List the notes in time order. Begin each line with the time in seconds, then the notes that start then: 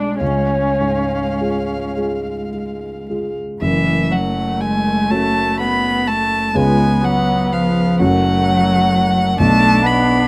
Already playing: B1 G#3 D4 G#4 D5
0.21 C#2 C#4 F5
0.81 G#2
1.40 G#3 F4 G#4
1.96 G#3 F4 G#4
2.53 G#3
3.09 G#3 F4 G#4
3.61 F#1 F#2 E3 A3 E5
4.11 F#3 F#5
4.60 G#3 G#5
5.11 A3 C#4 F#4 A5
5.60 B3 B5
6.07 A3 A5
6.55 C#2 C#3 G#3 B3 C#4 F4 G#5
7.03 F#3 F#5
7.52 F3 F5
7.99 F#1 F#2 F#3 A3 C#4 F#4 F#5
9.39 B1 B2 A3 D4 A5
9.84 B3 B5